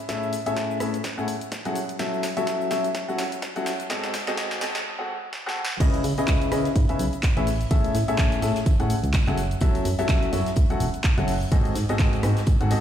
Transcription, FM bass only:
5.80 5.90 C#2 loud
6.04 6.13 C#3 medium
6.28 6.37 C#2 medium
6.52 6.61 C#3 loud
6.76 6.85 G#2 medium
6.99 7.09 B1 medium
7.37 7.66 A1 medium
7.71 7.80 A1 loud
7.95 8.04 A2 medium
8.18 8.28 A1 medium
8.42 8.51 A2 medium
8.66 8.75 A1 loud
8.80 8.95 A2 medium
9.03 9.19 C#2 medium
9.27 9.56 F#1 medium
9.61 9.71 F#1 loud
9.85 9.94 F#2 medium
10.09 10.18 F#1 medium
10.33 10.42 F#2 loud
10.57 10.66 C#2 medium
10.80 10.90 E1 medium
11.18 11.47 F#1 medium
11.52 11.61 G#1 loud
11.75 11.85 G#2 medium
11.99 12.09 G#1 loud
12.23 12.32 G#2 medium
12.47 12.56 G#1 loud
12.61 12.76 G#2 medium

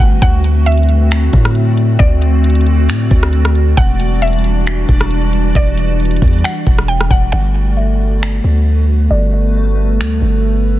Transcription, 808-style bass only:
0.00 0.21 G1 loud
0.22 1.29 D2 loud
1.33 1.97 A2 loud
2.00 2.90 D2 loud
2.89 3.10 A2 loud
3.11 3.75 D2 loud
3.78 4.85 E1 loud
4.89 5.53 E1 loud
5.55 6.19 E1 loud
6.22 6.43 E2 loud
6.67 7.09 E1 loud
7.11 7.32 E1 loud
7.33 8.40 G1 loud
8.44 9.08 D2 loud
9.11 10.01 G1 loud
10.00 10.21 D2 medium
10.22 10.80 G1 loud

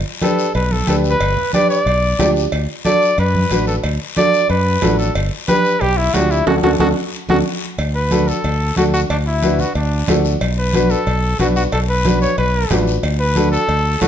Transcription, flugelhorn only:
0.23 0.53 A4 medium
0.55 0.74 B4 medium
0.72 0.88 A4 medium
0.89 0.96 A4 medium
1.10 1.51 B4 medium
1.54 1.69 D5 loud
1.70 2.32 D5 loud
2.86 3.16 D5 loud
3.20 3.65 B4 medium
3.68 3.75 A4 medium
4.18 4.48 D5 loud
4.50 4.96 B4 medium
4.99 5.14 A4 medium
5.48 5.83 B4 loud
5.81 5.99 G4 loud
5.97 6.16 E4 medium
6.14 6.32 F#4 medium
6.31 6.47 E4 loud
6.48 6.55 F#4 medium
6.63 6.71 F#4 medium
6.80 6.88 F#4 medium
7.30 7.38 F#4 medium
7.95 8.30 B4 medium
8.28 8.77 A4 medium
8.77 8.85 F#4 medium
8.94 9.01 F#4 loud
9.10 9.18 D4 medium
9.27 9.62 E4 medium
9.60 9.75 F#4 medium
9.76 10.21 D4 medium
10.59 10.92 B4 medium
10.91 11.40 A4 loud
11.40 11.47 F#4 medium
11.56 11.64 F#4 medium
11.73 11.80 A4 medium
11.89 12.20 B4 medium
12.22 12.37 C#5 medium
12.38 12.84 B4 medium
13.20 13.50 B4 medium
13.52 13.98 A4 loud
14.02 14.08 F#4 medium

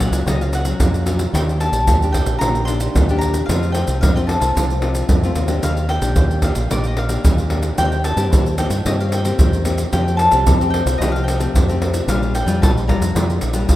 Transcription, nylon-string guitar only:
0.00 0.24 A#2 medium
0.00 0.22 F#3 medium
0.00 0.22 C#4 medium
0.00 0.22 F4 medium
0.26 0.78 A#2 medium
0.26 0.62 F#3 medium
0.26 0.63 C#4 medium
0.26 0.63 F4 medium
0.65 1.02 F#3 medium
0.65 1.03 C#4 medium
0.80 1.31 A#2 medium
1.06 1.22 F#3 medium
1.06 1.22 C#4 medium
1.06 1.23 F4 medium
1.34 1.85 D#3 medium
1.34 1.57 A#3 medium
1.34 1.57 D4 medium
1.34 1.57 G4 medium
1.60 1.97 A#3 medium
1.60 1.97 D4 medium
1.60 1.97 G4 medium
1.88 2.39 A#2 medium
2.02 2.38 A#3 medium
2.02 2.38 D4 medium
2.02 2.38 G4 medium
2.41 2.92 D#3 medium
2.41 2.64 A#3 medium
2.41 2.64 D4 soft
2.41 2.65 G4 medium
2.67 3.04 A#3 medium
2.67 3.04 D4 medium
2.67 3.04 G4 medium
2.96 3.47 A#2 medium
3.09 3.45 A#3 medium
3.09 3.45 D4 medium
3.09 3.45 G4 medium
3.49 4.00 F3 medium
3.49 3.72 A3 medium
3.49 3.72 C4 soft
3.49 3.72 F4 medium
3.75 4.01 A3 medium
3.75 4.01 C4 medium
3.75 4.01 F4 medium
4.02 4.53 C3 medium
4.16 4.39 A3 medium
4.16 4.39 C4 medium
4.16 4.39 F4 medium
4.41 4.51 A3 medium
4.41 4.51 C4 medium
4.41 4.51 F4 medium
4.54 5.07 F3 medium
4.54 4.78 A3 soft
4.54 4.78 C4 medium
4.54 4.78 F4 medium
4.81 5.08 A3 medium
4.81 5.08 C4 medium
4.81 5.08 F4 medium
5.09 5.60 C3 medium
5.24 5.46 A3 medium
5.24 5.46 C4 medium
5.24 5.46 F4 medium
5.48 5.85 A#3 medium
5.48 5.85 D4 medium
5.48 5.86 G4 medium
5.64 6.15 D#3 medium
6.02 6.39 A#3 medium
6.02 6.39 D4 medium
6.02 6.39 G4 medium
6.18 6.68 A#2 medium
6.43 6.59 A#3 medium
6.43 6.60 D4 medium
6.43 6.60 G4 medium
6.70 7.22 D#3 medium
6.70 6.96 A#3 medium
6.70 6.96 D4 soft
6.70 6.96 G4 medium
7.10 7.47 A#3 medium
7.10 7.47 D4 medium
7.10 7.47 G4 medium
7.25 7.76 A#2 medium
7.50 7.67 A#3 medium
7.50 7.67 D4 medium
7.50 7.67 G4 medium
7.79 8.30 D#3 medium
7.79 8.15 A#3 medium
7.79 8.15 C4 medium
7.79 8.15 G4 medium
8.17 8.54 A#3 medium
8.17 8.54 C4 medium
8.17 8.54 G4 medium
8.33 8.83 D#3 medium
8.59 8.75 A#3 medium
8.59 8.75 C4 medium
8.59 8.75 G4 medium
8.86 9.37 D#3 medium
8.86 9.22 A#3 medium
8.86 9.22 C4 medium
8.86 9.22 G4 medium
9.25 9.61 A#3 medium
9.25 9.62 C4 medium
9.25 9.62 G4 medium
9.40 9.90 D#3 medium
9.66 9.82 A#3 medium
9.66 9.82 C4 medium
9.66 9.82 G4 medium
9.92 10.44 F3 medium
9.92 10.18 A3 medium
9.92 10.18 C4 medium
9.92 10.19 G4 medium
10.31 10.55 A3 medium
10.31 10.55 C4 medium
10.31 10.55 G4 medium
10.47 10.98 C3 medium
10.61 10.96 A3 medium
10.61 10.97 C4 medium
10.61 10.97 G4 medium
11.00 11.52 F3 medium
11.00 11.26 A3 medium
11.00 11.26 C4 medium
11.00 11.26 G4 medium
11.39 11.63 A3 medium
11.39 11.63 C4 medium
11.39 11.63 G4 medium
11.55 12.06 C3 medium
11.68 12.04 A3 medium
11.68 12.04 C4 medium
11.68 12.05 G4 medium
12.07 12.59 A#2 medium
12.07 12.33 G3 medium
12.07 12.33 D4 medium
12.07 12.33 F4 medium
12.46 12.83 G3 medium
12.46 12.84 D4 medium
12.46 12.84 F4 medium
12.62 13.13 F3 medium
12.87 13.04 G3 medium
12.87 13.04 D4 medium
12.87 13.04 F4 medium
13.15 13.66 A#2 medium
13.15 13.41 G3 medium
13.15 13.41 D4 medium
13.15 13.41 F4 medium
13.54 13.76 G3 medium
13.54 13.76 D4 medium
13.54 13.76 F4 medium
13.68 13.76 F3 medium

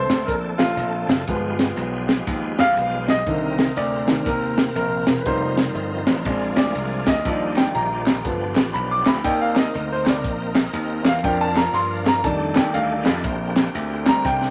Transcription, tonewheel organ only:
0.00 1.24 D3 medium
0.00 1.24 A3 medium
0.00 1.24 C4 medium
0.00 1.24 A4 medium
1.28 3.23 F3 medium
1.28 3.23 G#3 medium
1.28 3.23 B3 medium
1.28 3.23 G4 medium
3.27 5.23 C3 medium
3.27 5.23 A#3 medium
3.27 5.22 C4 medium
3.27 5.22 A#4 medium
5.27 6.24 F3 medium
5.27 6.25 C4 medium
5.27 6.24 D#4 medium
5.27 6.24 A#4 medium
6.26 7.24 F3 medium
6.26 7.24 A#3 medium
6.26 7.24 D4 medium
6.26 7.24 G#4 medium
7.25 8.23 D#3 medium
7.25 8.24 F3 medium
7.25 8.24 D4 medium
7.25 7.33 F4 medium
7.32 8.25 G4 medium
8.26 9.23 F3 medium
8.26 8.33 A3 soft
8.26 9.23 D4 medium
8.26 9.24 G4 medium
8.32 9.27 B3 medium
9.24 11.20 A#3 medium
9.24 11.21 C4 medium
9.24 11.20 D#4 medium
9.24 11.21 A#4 medium
11.23 12.22 F3 medium
11.23 12.23 A#3 medium
11.23 12.23 D4 medium
11.23 12.22 A#4 medium
12.24 13.23 D#3 medium
12.24 13.23 A3 medium
12.24 13.23 D4 medium
12.24 13.23 G4 medium
13.24 14.50 D3 medium
13.24 14.50 A#3 medium
13.24 14.50 C4 medium
13.24 13.32 F4 medium
13.30 14.50 G4 medium

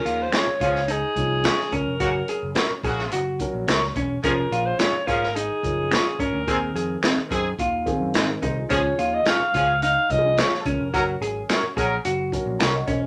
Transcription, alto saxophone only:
0.00 0.24 A#4 medium
0.22 0.37 C5 medium
0.36 0.93 C#5 loud
0.91 1.75 G#4 loud
1.74 2.57 A#4 medium
4.24 4.67 A#4 loud
4.66 4.81 C5 loud
4.79 5.08 C#5 loud
5.07 5.37 A#4 medium
5.35 6.21 G#4 medium
6.20 7.03 A#4 medium
8.71 9.16 C#5 loud
9.14 9.29 D#5 loud
9.28 9.82 F5 loud
9.83 10.13 F5 loud
10.11 10.41 D#5 medium
10.40 10.62 C#5 medium
10.60 10.70 A4 medium
10.68 11.22 A#4 medium

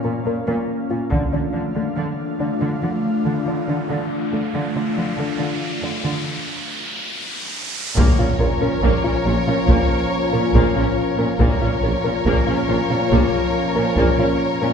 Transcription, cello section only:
0.04 0.12 A#2 soft
0.27 0.35 A#2 soft
0.48 0.56 A#2 medium
0.91 0.99 A#2 soft
1.12 1.20 D3 medium
1.33 1.41 D3 soft
1.55 1.63 D3 soft
1.76 1.84 D3 soft
1.96 2.04 D3 medium
2.39 2.47 D3 soft
2.61 2.69 D3 medium
2.83 2.91 D3 soft
3.26 3.34 D3 soft
3.46 3.54 D3 soft
3.68 3.76 D3 soft
3.90 3.98 D3 medium
4.33 4.41 D3 soft
4.54 4.62 D3 soft
4.75 4.83 D3 soft
4.97 5.05 D3 soft
5.18 5.26 D3 soft
5.39 5.47 D3 soft
5.83 5.91 D3 soft
6.03 6.11 D3 soft
7.96 8.04 A#2 medium
8.18 8.26 A#2 soft
8.40 8.48 A#2 soft
8.62 8.70 A#2 soft
8.83 8.91 A#2 medium
9.04 9.12 A#2 soft
9.26 9.34 A#2 soft
9.47 9.55 A#2 soft
9.68 9.76 A#2 medium
10.33 10.41 A#2 soft
10.55 10.63 A#2 medium
10.77 10.85 A#2 soft
11.19 11.27 A#2 soft
11.41 11.49 A#2 medium
11.62 11.70 A#2 soft
11.83 11.91 A#2 soft
12.05 12.13 A#2 soft
12.27 12.35 A#2 medium
12.48 12.56 A#2 soft
12.70 12.78 A#2 soft
12.91 12.99 A#2 soft
13.12 13.20 A#2 medium
13.76 13.84 A#2 soft
13.97 14.05 A#2 medium
14.18 14.26 A#2 soft
14.62 14.70 A#2 medium

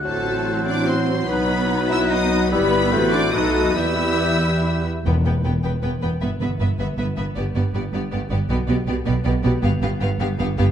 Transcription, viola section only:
0.00 1.25 F#4 medium
0.05 1.25 C4 medium
1.28 2.88 B3 medium
1.28 2.47 D#4 medium
2.52 2.90 E4 medium
2.92 3.31 C4 medium
2.92 3.31 F#4 medium
3.33 4.82 B3 medium
3.33 3.73 A4 medium
3.76 4.82 G4 medium
5.06 5.14 B3 medium
5.26 5.33 B3 soft
5.45 5.52 B3 soft
5.63 5.71 B3 soft
5.83 5.90 B3 medium
6.03 6.10 B3 soft
6.22 6.30 B3 medium
6.42 6.50 B3 soft
6.61 6.68 B3 medium
6.80 6.88 B3 soft
6.98 7.06 B3 medium
7.17 7.25 B3 soft
7.37 7.44 B3 medium
7.56 7.63 B3 soft
7.74 7.82 B3 medium
7.93 8.01 B3 medium
8.12 8.19 B3 medium
8.31 8.38 B3 medium
8.50 8.57 B3 medium
8.68 8.76 B3 medium
8.88 8.95 B3 medium
9.05 9.13 B3 medium
9.25 9.33 B3 medium
9.44 9.52 B3 medium
9.63 9.70 B3 medium
9.83 9.90 B3 medium
10.01 10.08 B3 medium
10.20 10.28 B3 medium
10.39 10.47 B3 medium
10.58 10.66 B3 medium

